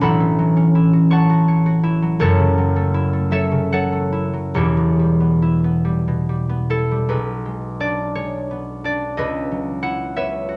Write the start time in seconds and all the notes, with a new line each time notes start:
Already playing: F#3 B3 C#4 F#4 C#5 A5
0.01 A1 A2 E5 F#5 B5
0.20 E3
0.39 F#3
0.57 C#4
0.75 E4
0.93 F#4
1.10 C#5 F#5 A5 C#6
1.30 F#4
1.48 C#5
1.66 F#4
1.83 E4
2.02 F#3
2.19 F#1 F#2 F#4 A4 C#5
2.39 C#3
2.58 F#3
2.76 A3
2.94 E4
3.13 A3
3.31 F#3 A4 C#5 E5
3.52 C#3
3.72 F#3 A4 C#5 F#5
3.92 A3
4.12 E4
4.33 F#3
4.54 E1 E2 E4 G4 C#5
4.77 B2
4.99 G3
5.20 B3
5.42 E4
5.64 B3
5.85 G3
6.08 B2
6.29 G3
6.49 B3
6.70 E4 A4
6.91 G3
7.09 B1 F#4 G#4 B4
7.45 G#3
7.80 D4 D5
8.15 G#3 C#5
8.51 B3
8.84 D4 D5
9.17 C#2 G#4 B4 D#5
9.51 F#3
9.82 E4 F#5
10.16 B3 B4 C#5 E5
10.49 F#4